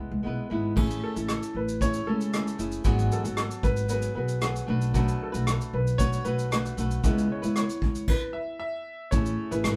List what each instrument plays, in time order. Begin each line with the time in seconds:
Already playing: nylon-string guitar G#3 B3 E4 B4, upright piano B4
0.11 upright bass C#2
0.23 upright bass B1, nylon-string guitar G#3 B3 E4 B4
0.50 upright bass G#1, nylon-string guitar G#3 B3 E4 B4
0.76 upright bass A1, nylon-string guitar A3 C#4 E4 G#4, kick, crash
0.90 shaker
1.04 upright piano A4
1.16 upright bass A1, nylon-string guitar C#4 E4, shaker
1.29 cross-stick, shaker
1.43 shaker
1.55 upright bass A1, upright piano B4
1.68 shaker
1.81 nylon-string guitar A3 C#4 E4 G#4, upright piano C#5, kick, shaker
1.94 shaker
2.07 upright bass C#2, nylon-string guitar A3 C#4 E4 G#4, upright piano A4
2.21 shaker
2.33 nylon-string guitar A3 C#4 E4 G#4, cross-stick, shaker
2.47 shaker
2.58 upright bass F#1, nylon-string guitar A3 C#4 E4 G#4, shaker
2.71 shaker
2.84 upright bass G#1, nylon-string guitar G#2 E3 F#3 B3 F#4 G#4, kick, shaker
2.99 shaker
3.12 upright piano A4, shaker
3.24 upright bass G#1, nylon-string guitar F#3 B3 F#4, shaker
3.37 cross-stick, shaker
3.51 shaker
3.63 upright bass G#1, upright piano B4, kick, shaker
3.76 shaker
3.88 nylon-string guitar F#3 B3 F#4 G#4, upright piano B4, shaker
4.02 shaker
4.15 upright bass B1, nylon-string guitar F#3 B3 F#4 G#4, upright piano B4
4.28 shaker
4.41 nylon-string guitar F#3 B3 F#4 G#4, cross-stick, shaker
4.56 shaker
4.67 upright bass B1, nylon-string guitar A3 D4 F#4 B4
4.81 shaker
4.94 nylon-string guitar B2 F#3 A3 D4 F#4 B4, kick, shaker
5.08 shaker
5.23 upright piano A4
5.32 upright bass B1, nylon-string guitar A3 D4 F#4 B4, shaker
5.47 cross-stick, shaker
5.61 shaker
5.73 upright bass B1, upright piano B4
5.87 shaker
5.98 nylon-string guitar A3 D4 F#4 B4, upright piano C#5, kick, shaker
6.13 shaker
6.24 upright bass B1, nylon-string guitar A3 D4 F#4 B4, upright piano B4, shaker
6.39 shaker
6.51 nylon-string guitar A3 D4 F#4 B4, cross-stick, shaker
6.66 shaker
6.77 upright bass B1, nylon-string guitar A3 D4 F#4 B4, shaker
6.91 shaker
7.03 upright bass C#2, nylon-string guitar C#3 G#3 B3 E4 B4, kick, shaker
7.18 shaker
7.32 upright piano C#5
7.42 upright bass C#2, nylon-string guitar B3 E4 B4, shaker
7.56 upright piano C#5, cross-stick, shaker
7.70 shaker
7.82 upright bass C#2, kick
7.95 shaker
8.08 upright piano B4, kick, crash
8.33 upright piano E5
8.60 upright piano E5
9.11 upright bass A1, nylon-string guitar A3 C#4 E4 G#4, upright piano C#5, kick, shaker
9.26 shaker
9.51 upright bass A1, nylon-string guitar C#4 E4 G#4, upright piano B4, shaker
9.64 upright bass G#1, cross-stick, shaker